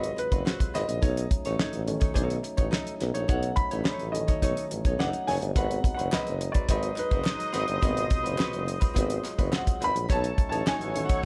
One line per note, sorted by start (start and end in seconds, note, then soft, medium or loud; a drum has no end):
0.00 0.11 G#1 medium
0.00 0.98 C3 medium
0.00 10.06 F#3 medium
0.00 0.98 G#3 medium
0.00 0.10 C4 medium
0.00 1.00 F4 medium
0.00 0.10 F#4 medium
0.00 0.11 B4 medium
0.00 0.16 D#5 medium
0.00 closed hi-hat medium
0.16 0.76 B4 medium
0.16 muted hollow-body jazz guitar stroke medium
0.16 closed hi-hat medium
0.31 0.43 F#1 medium
0.31 0.44 C4 soft
0.31 0.45 F#4 medium
0.31 0.46 B4 medium
0.31 kick medium
0.31 closed hi-hat soft
0.45 0.67 C4 medium
0.45 0.59 F#4 loud
0.45 0.59 C5 loud
0.45 snare loud
0.59 muted hollow-body jazz guitar stroke medium
0.59 kick medium
0.59 closed hi-hat medium
0.74 0.85 G#1 medium
0.74 0.91 C4 medium
0.74 0.87 F#4 medium
0.74 0.87 B4 medium
0.74 1.27 D#5 loud
0.74 snare soft
0.74 closed hi-hat medium
0.88 0.99 A#1 medium
0.88 muted hollow-body jazz guitar stroke soft
0.88 closed hi-hat medium
1.01 1.24 B1 loud
1.01 5.51 A3 medium
1.01 5.51 C#4 medium
1.01 5.51 D#4 medium
1.01 1.24 D#4 medium
1.01 1.24 A4 medium
1.01 1.24 C#5 medium
1.01 kick loud
1.01 closed hi-hat medium
1.17 closed hi-hat medium
1.30 muted hollow-body jazz guitar stroke soft
1.30 kick medium
1.30 closed hi-hat medium
1.45 1.56 A1 loud
1.45 1.59 D#4 medium
1.45 1.59 A4 medium
1.45 1.60 C#5 medium
1.45 closed hi-hat medium
1.59 1.65 A1 soft
1.59 1.81 D#4 medium
1.59 1.82 A4 medium
1.59 1.82 C#5 medium
1.59 snare loud
1.73 1.95 A1 medium
1.73 closed hi-hat soft
1.87 2.25 D#3 medium
1.87 2.25 A3 soft
1.87 2.26 C#4 medium
1.87 muted hollow-body jazz guitar stroke soft
1.87 closed hi-hat medium
2.00 2.13 D#4 medium
2.00 2.13 A4 medium
2.00 2.14 C#5 medium
2.00 kick loud
2.00 closed hi-hat medium
2.14 2.37 B1 loud
2.14 2.37 D#4 medium
2.14 2.37 A4 medium
2.14 2.37 C#5 medium
2.14 kick medium
2.14 closed hi-hat medium
2.30 closed hi-hat medium
2.43 muted hollow-body jazz guitar stroke soft
2.43 closed hi-hat medium
2.57 2.69 A1 medium
2.57 2.70 D#4 medium
2.57 2.71 A4 medium
2.57 2.71 C#5 medium
2.57 kick medium
2.57 closed hi-hat medium
2.71 2.93 D#4 medium
2.71 2.94 A4 medium
2.71 2.94 D#5 medium
2.71 snare loud
2.87 closed hi-hat soft
3.00 3.12 B1 loud
3.00 muted hollow-body jazz guitar stroke soft
3.00 snare soft
3.00 closed hi-hat medium
3.14 3.26 A#1 medium
3.14 3.27 D#4 medium
3.14 3.27 A4 medium
3.14 3.28 C#5 medium
3.14 closed hi-hat medium
3.28 3.51 B1 loud
3.28 3.50 D#4 medium
3.28 3.51 A4 medium
3.28 3.51 C#5 loud
3.28 3.56 F#5 medium
3.28 kick loud
3.28 closed hi-hat medium
3.43 closed hi-hat medium
3.56 4.15 B5 loud
3.56 muted hollow-body jazz guitar stroke soft
3.56 kick loud
3.56 closed hi-hat medium
3.71 3.83 A1 loud
3.71 3.82 D#4 soft
3.71 3.83 A4 medium
3.71 3.83 C#5 medium
3.71 closed hi-hat medium
3.84 3.91 A1 soft
3.84 4.07 D#4 medium
3.84 4.07 A4 medium
3.84 4.07 C#5 medium
3.84 snare loud
3.99 4.22 A1 medium
3.99 closed hi-hat soft
4.12 4.95 D#3 medium
4.12 4.95 A3 soft
4.12 4.95 C#4 medium
4.12 4.66 D#5 medium
4.12 muted hollow-body jazz guitar stroke soft
4.12 closed hi-hat medium
4.27 4.41 D#4 medium
4.27 4.41 A4 medium
4.27 4.42 C#5 medium
4.27 kick medium
4.27 closed hi-hat medium
4.42 4.53 B1 medium
4.42 4.64 D#4 medium
4.42 4.64 A4 medium
4.42 4.65 C#5 medium
4.42 kick medium
4.42 closed hi-hat loud
4.57 closed hi-hat medium
4.71 4.82 A1 medium
4.71 muted hollow-body jazz guitar stroke soft
4.71 closed hi-hat medium
4.85 4.96 B1 medium
4.85 4.98 D#4 medium
4.85 4.98 A4 medium
4.85 5.00 C#5 medium
4.85 kick medium
4.85 closed hi-hat soft
4.99 5.10 F#1 medium
4.99 5.21 D#4 medium
4.99 5.12 A4 medium
4.99 5.13 D#5 loud
4.99 5.29 F#5 loud
4.99 snare loud
5.13 muted hollow-body jazz guitar stroke soft
5.13 closed hi-hat medium
5.27 5.38 F#1 medium
5.27 5.45 D#4 medium
5.27 5.41 A4 medium
5.27 5.40 C#5 medium
5.27 5.34 G#5 loud
5.27 snare soft
5.27 open hi-hat medium
5.41 5.53 G1 medium
5.41 muted hollow-body jazz guitar stroke medium
5.41 closed hi-hat soft
5.54 5.78 G#1 loud
5.54 5.93 C3 medium
5.54 5.93 F#3 medium
5.54 10.06 G#3 medium
5.54 5.94 B3 medium
5.54 5.77 C4 medium
5.54 7.80 D#4 medium
5.54 5.78 F#4 medium
5.54 5.78 B4 loud
5.54 5.91 F#5 loud
5.54 kick loud
5.54 closed hi-hat medium
5.71 closed hi-hat medium
5.84 muted hollow-body jazz guitar stroke soft
5.84 kick loud
5.84 closed hi-hat medium
5.95 6.10 C4 medium
5.95 6.11 F#4 medium
5.95 6.11 B4 medium
5.95 6.14 F#5 medium
5.99 6.10 F#1 loud
5.99 closed hi-hat medium
6.12 6.18 F#1 soft
6.12 6.34 C4 medium
6.12 6.34 F#4 medium
6.12 6.34 B4 medium
6.12 6.48 D#5 medium
6.12 snare loud
6.12 clap loud
6.27 6.49 F#1 medium
6.27 closed hi-hat soft
6.40 muted hollow-body jazz guitar stroke soft
6.40 closed hi-hat medium
6.52 6.68 C4 medium
6.52 6.69 F#4 medium
6.52 6.69 B4 medium
6.52 6.71 D5 medium
6.52 kick medium
6.52 closed hi-hat medium
6.67 6.91 G#1 medium
6.67 6.91 C4 medium
6.67 9.77 D#4 medium
6.67 6.91 F#4 medium
6.67 6.92 B4 medium
6.67 9.76 C5 medium
6.67 9.77 D#5 loud
6.67 6.96 D#5 medium
6.67 kick medium
6.67 closed hi-hat loud
6.83 closed hi-hat medium
6.96 7.79 B4 medium
6.96 muted hollow-body jazz guitar stroke soft
6.96 clap medium
6.96 closed hi-hat medium
7.11 7.23 F#1 medium
7.11 7.24 C4 medium
7.11 7.25 F#4 medium
7.11 7.25 B4 medium
7.11 kick medium
7.11 closed hi-hat soft
7.25 muted hollow-body jazz guitar stroke soft
7.25 snare medium
7.25 clap loud
7.39 muted hollow-body jazz guitar stroke soft
7.39 closed hi-hat medium
7.52 7.65 G#1 medium
7.52 7.75 C4 medium
7.52 7.67 F#4 medium
7.52 7.66 B4 medium
7.52 snare soft
7.52 closed hi-hat medium
7.67 7.80 G1 medium
7.67 muted hollow-body jazz guitar stroke soft
7.67 closed hi-hat medium
7.81 8.04 G#1 loud
7.81 8.64 B2 medium
7.81 8.64 C3 medium
7.81 8.64 F#3 soft
7.81 8.04 C4 medium
7.81 10.07 F4 medium
7.81 8.04 F#4 medium
7.81 8.04 B4 medium
7.81 kick loud
7.81 closed hi-hat medium
7.97 closed hi-hat medium
8.10 muted hollow-body jazz guitar stroke soft
8.10 kick loud
8.10 closed hi-hat medium
8.23 8.36 F#1 loud
8.23 8.36 C4 soft
8.23 8.37 F#4 medium
8.23 8.37 B4 medium
8.23 closed hi-hat medium
8.37 8.45 F#1 soft
8.37 8.60 C4 medium
8.37 8.61 F#4 medium
8.37 8.61 B4 medium
8.37 snare loud
8.37 clap loud
8.53 8.76 F#1 medium
8.53 closed hi-hat soft
8.66 muted hollow-body jazz guitar stroke soft
8.66 closed hi-hat medium
8.80 8.92 C4 medium
8.80 8.94 F#4 medium
8.80 8.94 B4 medium
8.80 kick medium
8.80 closed hi-hat medium
8.94 9.18 G#1 medium
8.94 9.22 C3 soft
8.94 9.22 F#3 soft
8.94 9.22 B3 medium
8.94 9.17 C4 medium
8.94 9.17 F#4 medium
8.94 9.17 B4 medium
8.94 kick medium
8.94 closed hi-hat loud
9.10 closed hi-hat medium
9.23 muted hollow-body jazz guitar stroke soft
9.23 clap medium
9.23 closed hi-hat medium
9.38 9.50 F#1 loud
9.38 9.50 C4 medium
9.38 9.51 F#4 medium
9.38 9.52 B4 medium
9.38 kick medium
9.38 closed hi-hat soft
9.52 9.74 C4 medium
9.52 9.65 F#4 medium
9.52 9.65 C5 loud
9.52 snare loud
9.52 clap medium
9.56 9.84 F#5 medium
9.65 muted hollow-body jazz guitar stroke soft
9.65 kick medium
9.65 closed hi-hat medium
9.80 9.92 G#1 medium
9.80 9.98 C4 medium
9.80 9.94 F#4 medium
9.80 9.93 B4 medium
9.80 closed hi-hat medium
9.84 10.12 B5 loud
9.95 10.06 A#1 medium
9.95 muted hollow-body jazz guitar stroke soft
9.95 closed hi-hat medium
10.09 10.32 B1 loud
10.09 11.25 F#3 medium
10.09 11.25 A3 medium
10.09 11.25 C#4 medium
10.09 10.31 D#4 medium
10.09 11.25 D#4 medium
10.09 11.25 F#4 medium
10.09 10.31 A4 medium
10.09 11.25 A4 medium
10.09 11.25 C#5 loud
10.09 10.32 C#5 loud
10.09 10.46 A5 medium
10.09 kick loud
10.09 closed hi-hat medium
10.24 closed hi-hat medium
10.38 muted hollow-body jazz guitar stroke soft
10.38 kick loud
10.38 closed hi-hat medium
10.49 10.62 A1 medium
10.49 10.65 D#4 medium
10.49 10.66 A4 medium
10.49 10.67 C#5 medium
10.49 10.66 A5 medium
10.49 closed hi-hat medium
10.65 10.71 A1 soft
10.65 10.88 D#4 medium
10.65 10.89 A4 medium
10.65 10.89 C#5 loud
10.65 11.03 G#5 medium
10.65 snare loud
10.65 clap loud
10.81 11.03 A1 medium
10.81 closed hi-hat soft
10.94 11.25 D#3 medium
10.94 11.25 A3 soft
10.94 11.25 C#4 medium
10.94 muted hollow-body jazz guitar stroke soft
10.94 closed hi-hat medium
11.05 11.22 C#5 medium
11.05 11.24 F#5 medium
11.05 closed hi-hat medium
11.10 11.22 D#4 soft
11.10 11.23 A4 soft
11.10 kick loud